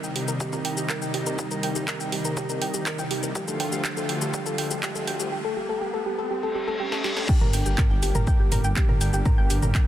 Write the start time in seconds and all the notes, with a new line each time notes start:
Already playing: C3 D#3 G3 D#4, riser
0.04 C2 G5, shaker
0.16 C2 G4, open hi-hat
0.28 C2 A#4, shaker
0.40 G4, kick, shaker
0.53 C2 A#4, mid tom, shaker
0.65 C2 G5, open hi-hat
0.77 C2 G4, shaker
0.89 A#4, kick, clap, shaker
1.02 C2 G5, shaker
1.14 C2 G4, mid tom, open hi-hat
1.26 C2 A#4, shaker
1.39 G4, kick, shaker
1.51 C2 A#4, shaker
1.63 C2 G5, open hi-hat
1.76 C2 G4, mid tom, shaker
1.88 A#4, kick, clap, shaker
2.00 C2 G5, shaker
2.12 C2 G4, open hi-hat
2.25 C2 A#4, shaker
2.37 G4, kick, mid tom, shaker
2.49 C2 A#4, shaker
2.62 C2 G5, open hi-hat
2.74 C2 G4, shaker
2.86 A#4, kick, clap, shaker
2.99 C2 G5, mid tom, shaker
3.11 C2 G4, open hi-hat
3.23 C2 A#4, shaker
3.35 D3 F3 A3 F4 G4, kick, shaker
3.48 D2 A4, shaker
3.60 D2 G5, mid tom, open hi-hat
3.72 D2 G4, shaker
3.85 G4, kick, clap, shaker
3.97 D2 A4, shaker
4.09 D2 G5, open hi-hat
4.22 D2 G4, mid tom, shaker
4.34 G4, kick, shaker
4.46 D2 A4, shaker
4.58 D2 G5, open hi-hat
4.71 D2 G4, shaker
4.83 G4, kick, clap, mid tom, shaker
4.95 D2 A4, shaker
5.07 D2 G5, open hi-hat
5.20 D2 G4, shaker
5.32 G4
5.44 A4
5.57 G4
5.69 A4
5.81 G4
5.94 A4
6.06 G4
6.18 A4
6.30 G4, reverse cymbal
6.43 A4
6.55 G4
6.68 A4
6.80 G4
6.92 A4, snare
7.04 G4, snare
7.17 A4, snare
7.29 D3 G3 A#3 G4 G5, kick, crash, shaker
7.41 G1 A#4 A#5, mid tom
7.53 G1 G5 G6, open hi-hat, shaker
7.66 G1 G4 G5, shaker
7.78 A#4 A#5, kick, clap, mid tom, shaker
7.90 G1 G5 G6
8.03 G1 G4 G5, open hi-hat, shaker
8.15 G1 A#4 A#5, mid tom, shaker
8.27 G5 G6, kick, shaker
8.40 G1 G4 G5
8.52 G1 A#4 A#5, mid tom, open hi-hat, shaker
8.64 G1 G5 G6, shaker
8.76 G4, kick, clap, shaker
8.89 G1 A#4 A#5, mid tom
9.01 G1 G5 G6, open hi-hat, shaker
9.13 G1 G4 G5, shaker
9.26 A#4 A#5, kick, mid tom, shaker
9.38 G1 G5 G6
9.50 G1 G4 G5, open hi-hat, shaker
9.63 G1 A#4 A#5, mid tom, shaker
9.75 G5 G6, kick, clap, shaker